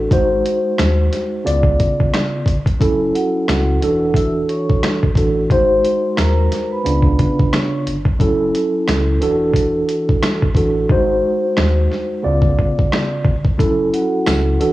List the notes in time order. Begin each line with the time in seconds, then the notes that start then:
0.11 G#1 G#3 D#4 F#4 C5, kick, closed hi-hat
0.46 closed hi-hat
0.78 D#2, cross-stick, snare, closed hi-hat
1.12 snare, closed hi-hat
1.44 C#2 C#3 B3 F4 D5, closed hi-hat
1.63 kick
1.80 kick, closed hi-hat
2.00 kick
2.14 cross-stick, snare, closed hi-hat
2.46 G1, kick, closed hi-hat
2.66 kick, closed hi-hat
2.79 F#1 F#3 C#4 E4 A4, kick, closed hi-hat
3.15 F#4 F#5, closed hi-hat
3.48 C#2, cross-stick, snare, closed hi-hat
3.82 E1 E3 D4 F#4 A4, closed hi-hat
4.14 E5 E6, kick, closed hi-hat
4.49 C#5 C#6, closed hi-hat
4.70 kick
4.83 cross-stick, snare, closed hi-hat
5.03 kick
5.16 A1 E3 D4 F#4 A4, kick, closed hi-hat
5.50 G#1 G#3 D#4 F#4 C5 C6, kick, closed hi-hat
5.85 closed hi-hat
6.16 D#2 A#4 A#5, cross-stick, snare, closed hi-hat
6.52 snare, closed hi-hat
6.71 B4 B5
6.83 C#2 C#3 B3 D4 F4, closed hi-hat
7.02 kick
7.19 kick, closed hi-hat
7.39 kick
7.52 C#5 C#6, cross-stick, snare, closed hi-hat
7.87 G1, closed hi-hat
8.05 kick
8.19 F#1 F#3 C#4 E4 A4, kick, closed hi-hat
8.55 closed hi-hat
8.87 C#2, cross-stick, snare, closed hi-hat
9.21 E1 E3 D4 F#4 A4, closed hi-hat
9.53 kick, closed hi-hat
9.89 closed hi-hat
10.09 kick
10.23 cross-stick, snare, closed hi-hat
10.42 kick
10.55 A1 E3 D4 F#4 A4, kick, closed hi-hat
10.90 G#1 G#3 D#4 F#4 C5, kick
11.57 D#2, cross-stick, snare
11.92 snare
12.23 C#2 C#3 B3 F4 D5
12.42 kick
12.59 kick
12.79 kick
12.92 cross-stick, snare
13.25 G1, kick
13.45 kick
13.58 F#1 F#3 C#4 E4 A4, kick, closed hi-hat
13.94 F#4 F#5, closed hi-hat
14.26 C#2, cross-stick, snare, closed hi-hat, tambourine
14.60 E1 E3 D4 F#4 A4, closed hi-hat